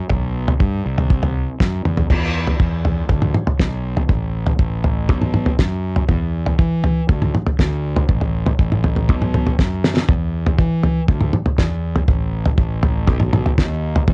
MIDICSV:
0, 0, Header, 1, 3, 480
1, 0, Start_track
1, 0, Tempo, 499168
1, 99, Time_signature, 4, 2, 24, 8
1, 13593, End_track
2, 0, Start_track
2, 0, Title_t, "Fingered electric bass"
2, 0, Program_c, 0, 33
2, 101, Note_on_c, 0, 35, 87
2, 493, Note_off_c, 0, 35, 0
2, 580, Note_on_c, 0, 43, 91
2, 776, Note_off_c, 0, 43, 0
2, 825, Note_on_c, 0, 36, 84
2, 1412, Note_off_c, 0, 36, 0
2, 1545, Note_on_c, 0, 42, 83
2, 1759, Note_off_c, 0, 42, 0
2, 1781, Note_on_c, 0, 40, 76
2, 1996, Note_off_c, 0, 40, 0
2, 2020, Note_on_c, 0, 40, 91
2, 2413, Note_off_c, 0, 40, 0
2, 2504, Note_on_c, 0, 40, 78
2, 2896, Note_off_c, 0, 40, 0
2, 2977, Note_on_c, 0, 38, 84
2, 3175, Note_off_c, 0, 38, 0
2, 3460, Note_on_c, 0, 35, 98
2, 3853, Note_off_c, 0, 35, 0
2, 3941, Note_on_c, 0, 33, 96
2, 4334, Note_off_c, 0, 33, 0
2, 4415, Note_on_c, 0, 33, 80
2, 4897, Note_off_c, 0, 33, 0
2, 4897, Note_on_c, 0, 35, 93
2, 5292, Note_off_c, 0, 35, 0
2, 5377, Note_on_c, 0, 42, 90
2, 5772, Note_off_c, 0, 42, 0
2, 5857, Note_on_c, 0, 40, 99
2, 6252, Note_off_c, 0, 40, 0
2, 6334, Note_on_c, 0, 52, 81
2, 6730, Note_off_c, 0, 52, 0
2, 6822, Note_on_c, 0, 38, 93
2, 7019, Note_off_c, 0, 38, 0
2, 7301, Note_on_c, 0, 38, 95
2, 7694, Note_off_c, 0, 38, 0
2, 7784, Note_on_c, 0, 33, 100
2, 8176, Note_off_c, 0, 33, 0
2, 8262, Note_on_c, 0, 33, 79
2, 8744, Note_off_c, 0, 33, 0
2, 8744, Note_on_c, 0, 35, 92
2, 9136, Note_off_c, 0, 35, 0
2, 9225, Note_on_c, 0, 42, 85
2, 9616, Note_off_c, 0, 42, 0
2, 9700, Note_on_c, 0, 40, 102
2, 10093, Note_off_c, 0, 40, 0
2, 10178, Note_on_c, 0, 52, 82
2, 10572, Note_off_c, 0, 52, 0
2, 10660, Note_on_c, 0, 38, 92
2, 10857, Note_off_c, 0, 38, 0
2, 11141, Note_on_c, 0, 40, 96
2, 11533, Note_off_c, 0, 40, 0
2, 11615, Note_on_c, 0, 33, 97
2, 12010, Note_off_c, 0, 33, 0
2, 12097, Note_on_c, 0, 33, 84
2, 12576, Note_off_c, 0, 33, 0
2, 12576, Note_on_c, 0, 35, 105
2, 12970, Note_off_c, 0, 35, 0
2, 13058, Note_on_c, 0, 39, 93
2, 13451, Note_off_c, 0, 39, 0
2, 13538, Note_on_c, 0, 40, 104
2, 13593, Note_off_c, 0, 40, 0
2, 13593, End_track
3, 0, Start_track
3, 0, Title_t, "Drums"
3, 93, Note_on_c, 9, 43, 72
3, 97, Note_on_c, 9, 36, 91
3, 189, Note_off_c, 9, 43, 0
3, 193, Note_off_c, 9, 36, 0
3, 463, Note_on_c, 9, 43, 83
3, 559, Note_off_c, 9, 43, 0
3, 580, Note_on_c, 9, 36, 98
3, 676, Note_off_c, 9, 36, 0
3, 944, Note_on_c, 9, 43, 76
3, 1040, Note_off_c, 9, 43, 0
3, 1061, Note_on_c, 9, 36, 106
3, 1158, Note_off_c, 9, 36, 0
3, 1182, Note_on_c, 9, 43, 82
3, 1278, Note_off_c, 9, 43, 0
3, 1541, Note_on_c, 9, 36, 105
3, 1545, Note_on_c, 9, 38, 52
3, 1637, Note_off_c, 9, 36, 0
3, 1642, Note_off_c, 9, 38, 0
3, 1782, Note_on_c, 9, 45, 79
3, 1878, Note_off_c, 9, 45, 0
3, 1898, Note_on_c, 9, 43, 80
3, 1994, Note_off_c, 9, 43, 0
3, 2020, Note_on_c, 9, 36, 94
3, 2022, Note_on_c, 9, 43, 75
3, 2022, Note_on_c, 9, 49, 90
3, 2116, Note_off_c, 9, 36, 0
3, 2118, Note_off_c, 9, 43, 0
3, 2118, Note_off_c, 9, 49, 0
3, 2379, Note_on_c, 9, 43, 76
3, 2475, Note_off_c, 9, 43, 0
3, 2498, Note_on_c, 9, 36, 101
3, 2594, Note_off_c, 9, 36, 0
3, 2740, Note_on_c, 9, 43, 74
3, 2836, Note_off_c, 9, 43, 0
3, 2972, Note_on_c, 9, 43, 77
3, 2976, Note_on_c, 9, 36, 99
3, 3069, Note_off_c, 9, 43, 0
3, 3072, Note_off_c, 9, 36, 0
3, 3096, Note_on_c, 9, 47, 72
3, 3192, Note_off_c, 9, 47, 0
3, 3216, Note_on_c, 9, 47, 75
3, 3312, Note_off_c, 9, 47, 0
3, 3337, Note_on_c, 9, 43, 79
3, 3433, Note_off_c, 9, 43, 0
3, 3456, Note_on_c, 9, 36, 91
3, 3460, Note_on_c, 9, 38, 67
3, 3552, Note_off_c, 9, 36, 0
3, 3557, Note_off_c, 9, 38, 0
3, 3816, Note_on_c, 9, 43, 75
3, 3912, Note_off_c, 9, 43, 0
3, 3933, Note_on_c, 9, 43, 75
3, 3935, Note_on_c, 9, 36, 96
3, 4029, Note_off_c, 9, 43, 0
3, 4031, Note_off_c, 9, 36, 0
3, 4293, Note_on_c, 9, 43, 82
3, 4389, Note_off_c, 9, 43, 0
3, 4414, Note_on_c, 9, 36, 96
3, 4510, Note_off_c, 9, 36, 0
3, 4655, Note_on_c, 9, 43, 76
3, 4751, Note_off_c, 9, 43, 0
3, 4895, Note_on_c, 9, 36, 96
3, 4896, Note_on_c, 9, 43, 81
3, 4992, Note_off_c, 9, 36, 0
3, 4992, Note_off_c, 9, 43, 0
3, 5016, Note_on_c, 9, 47, 73
3, 5112, Note_off_c, 9, 47, 0
3, 5133, Note_on_c, 9, 47, 76
3, 5229, Note_off_c, 9, 47, 0
3, 5250, Note_on_c, 9, 43, 80
3, 5347, Note_off_c, 9, 43, 0
3, 5374, Note_on_c, 9, 36, 96
3, 5375, Note_on_c, 9, 38, 66
3, 5470, Note_off_c, 9, 36, 0
3, 5471, Note_off_c, 9, 38, 0
3, 5732, Note_on_c, 9, 43, 76
3, 5828, Note_off_c, 9, 43, 0
3, 5852, Note_on_c, 9, 43, 75
3, 5855, Note_on_c, 9, 36, 97
3, 5948, Note_off_c, 9, 43, 0
3, 5951, Note_off_c, 9, 36, 0
3, 6215, Note_on_c, 9, 43, 79
3, 6312, Note_off_c, 9, 43, 0
3, 6336, Note_on_c, 9, 36, 101
3, 6432, Note_off_c, 9, 36, 0
3, 6576, Note_on_c, 9, 43, 78
3, 6672, Note_off_c, 9, 43, 0
3, 6819, Note_on_c, 9, 36, 104
3, 6819, Note_on_c, 9, 43, 76
3, 6915, Note_off_c, 9, 36, 0
3, 6915, Note_off_c, 9, 43, 0
3, 6943, Note_on_c, 9, 47, 76
3, 7039, Note_off_c, 9, 47, 0
3, 7064, Note_on_c, 9, 47, 74
3, 7161, Note_off_c, 9, 47, 0
3, 7179, Note_on_c, 9, 43, 77
3, 7275, Note_off_c, 9, 43, 0
3, 7299, Note_on_c, 9, 36, 96
3, 7304, Note_on_c, 9, 38, 68
3, 7395, Note_off_c, 9, 36, 0
3, 7400, Note_off_c, 9, 38, 0
3, 7658, Note_on_c, 9, 43, 82
3, 7754, Note_off_c, 9, 43, 0
3, 7776, Note_on_c, 9, 43, 76
3, 7778, Note_on_c, 9, 36, 100
3, 7873, Note_off_c, 9, 43, 0
3, 7875, Note_off_c, 9, 36, 0
3, 7897, Note_on_c, 9, 43, 70
3, 7993, Note_off_c, 9, 43, 0
3, 8138, Note_on_c, 9, 43, 82
3, 8234, Note_off_c, 9, 43, 0
3, 8260, Note_on_c, 9, 36, 104
3, 8356, Note_off_c, 9, 36, 0
3, 8384, Note_on_c, 9, 47, 71
3, 8480, Note_off_c, 9, 47, 0
3, 8500, Note_on_c, 9, 43, 73
3, 8597, Note_off_c, 9, 43, 0
3, 8619, Note_on_c, 9, 43, 70
3, 8716, Note_off_c, 9, 43, 0
3, 8741, Note_on_c, 9, 43, 82
3, 8742, Note_on_c, 9, 36, 103
3, 8837, Note_off_c, 9, 43, 0
3, 8838, Note_off_c, 9, 36, 0
3, 8864, Note_on_c, 9, 47, 72
3, 8960, Note_off_c, 9, 47, 0
3, 8984, Note_on_c, 9, 43, 78
3, 8984, Note_on_c, 9, 47, 76
3, 9080, Note_off_c, 9, 43, 0
3, 9080, Note_off_c, 9, 47, 0
3, 9103, Note_on_c, 9, 43, 80
3, 9199, Note_off_c, 9, 43, 0
3, 9221, Note_on_c, 9, 36, 100
3, 9227, Note_on_c, 9, 38, 51
3, 9317, Note_off_c, 9, 36, 0
3, 9323, Note_off_c, 9, 38, 0
3, 9466, Note_on_c, 9, 38, 80
3, 9562, Note_off_c, 9, 38, 0
3, 9586, Note_on_c, 9, 38, 81
3, 9682, Note_off_c, 9, 38, 0
3, 9700, Note_on_c, 9, 36, 103
3, 9700, Note_on_c, 9, 43, 74
3, 9796, Note_off_c, 9, 36, 0
3, 9796, Note_off_c, 9, 43, 0
3, 10062, Note_on_c, 9, 43, 83
3, 10159, Note_off_c, 9, 43, 0
3, 10178, Note_on_c, 9, 36, 101
3, 10274, Note_off_c, 9, 36, 0
3, 10417, Note_on_c, 9, 43, 73
3, 10514, Note_off_c, 9, 43, 0
3, 10657, Note_on_c, 9, 36, 105
3, 10657, Note_on_c, 9, 43, 78
3, 10753, Note_off_c, 9, 36, 0
3, 10753, Note_off_c, 9, 43, 0
3, 10774, Note_on_c, 9, 47, 73
3, 10871, Note_off_c, 9, 47, 0
3, 10895, Note_on_c, 9, 47, 78
3, 10991, Note_off_c, 9, 47, 0
3, 11016, Note_on_c, 9, 43, 82
3, 11113, Note_off_c, 9, 43, 0
3, 11137, Note_on_c, 9, 36, 94
3, 11140, Note_on_c, 9, 38, 73
3, 11233, Note_off_c, 9, 36, 0
3, 11236, Note_off_c, 9, 38, 0
3, 11497, Note_on_c, 9, 43, 81
3, 11593, Note_off_c, 9, 43, 0
3, 11616, Note_on_c, 9, 36, 100
3, 11619, Note_on_c, 9, 43, 77
3, 11712, Note_off_c, 9, 36, 0
3, 11715, Note_off_c, 9, 43, 0
3, 11977, Note_on_c, 9, 43, 83
3, 12073, Note_off_c, 9, 43, 0
3, 12095, Note_on_c, 9, 36, 100
3, 12191, Note_off_c, 9, 36, 0
3, 12336, Note_on_c, 9, 43, 84
3, 12432, Note_off_c, 9, 43, 0
3, 12572, Note_on_c, 9, 43, 82
3, 12575, Note_on_c, 9, 36, 109
3, 12668, Note_off_c, 9, 43, 0
3, 12671, Note_off_c, 9, 36, 0
3, 12691, Note_on_c, 9, 47, 79
3, 12787, Note_off_c, 9, 47, 0
3, 12818, Note_on_c, 9, 47, 83
3, 12914, Note_off_c, 9, 47, 0
3, 12941, Note_on_c, 9, 43, 81
3, 13037, Note_off_c, 9, 43, 0
3, 13058, Note_on_c, 9, 36, 100
3, 13065, Note_on_c, 9, 38, 74
3, 13154, Note_off_c, 9, 36, 0
3, 13161, Note_off_c, 9, 38, 0
3, 13420, Note_on_c, 9, 43, 85
3, 13516, Note_off_c, 9, 43, 0
3, 13535, Note_on_c, 9, 43, 81
3, 13536, Note_on_c, 9, 36, 101
3, 13593, Note_off_c, 9, 36, 0
3, 13593, Note_off_c, 9, 43, 0
3, 13593, End_track
0, 0, End_of_file